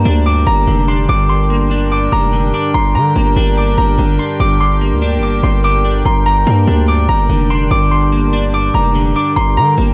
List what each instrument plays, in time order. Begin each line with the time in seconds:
Already playing: clean electric guitar G2 A#3, analog synth pad D4 G4 A#4 G5, harp A#5 C6, synth bell A#5
0.05 808-style bass D2, clean electric guitar D4
0.26 clean electric guitar G2, harp D6
0.47 808-style bass G1, clean electric guitar G2, harp A#5
0.67 808-style bass F1, clean electric guitar D3
0.88 clean electric guitar D4, harp C6
1.09 808-style bass G1, clean electric guitar G2, harp D6
1.29 clean electric guitar G2, synth bell C6, harp C6
1.50 clean electric guitar A#3
1.71 clean electric guitar D4
1.92 clean electric guitar G2, harp D6
2.12 808-style bass F1, clean electric guitar G2, harp A#5, synth bell D6
2.33 clean electric guitar D3
2.54 clean electric guitar D4, harp D6
2.74 808-style bass G1, clean electric guitar G2, synth bell A#5, harp C6
2.95 808-style bass D3, harp A#5
3.16 808-style bass G1, clean electric guitar A#3
3.36 808-style bass G1, clean electric guitar D4
3.57 clean electric guitar G2, harp D6
3.78 808-style bass G1, clean electric guitar G2, harp A#5
3.98 808-style bass G1, clean electric guitar D3
4.19 clean electric guitar D4, harp C6
4.40 808-style bass G1, clean electric guitar G2, harp D6
4.60 clean electric guitar G2, harp C6, synth bell D6
4.81 clean electric guitar A#3
4.92 808-style bass D2
5.02 clean electric guitar D4
5.18 808-style bass G1
5.23 clean electric guitar G2, harp D6
5.43 808-style bass G1, clean electric guitar G2, harp C6
5.64 clean electric guitar D3, harp D6
5.85 clean electric guitar D4
6.05 808-style bass G1, clean electric guitar G2, analog synth pad D4, synth bell A#5, harp C6
6.26 clean electric guitar G2, harp A#5
6.47 808-style bass G2, clean electric guitar A#3
6.67 808-style bass D2, clean electric guitar D4
6.88 clean electric guitar G2, harp D6
7.09 808-style bass G1, clean electric guitar G2, harp A#5
7.29 808-style bass F1, clean electric guitar D3
7.50 clean electric guitar D4, harp C6
7.71 808-style bass G1, clean electric guitar G2, harp D6
7.91 clean electric guitar G2, synth bell C6, harp C6
8.12 clean electric guitar A#3
8.33 clean electric guitar D4
8.54 clean electric guitar G2, harp D6
8.74 808-style bass F1, clean electric guitar G2, harp A#5, synth bell D6
8.95 clean electric guitar D3
9.16 clean electric guitar D4, harp D6
9.36 808-style bass G1, clean electric guitar G2, analog synth pad D4 G4 A#4 G5, synth bell A#5, harp C6
9.57 clean electric guitar G2, 808-style bass D3, harp A#5
9.78 808-style bass G1, clean electric guitar A#3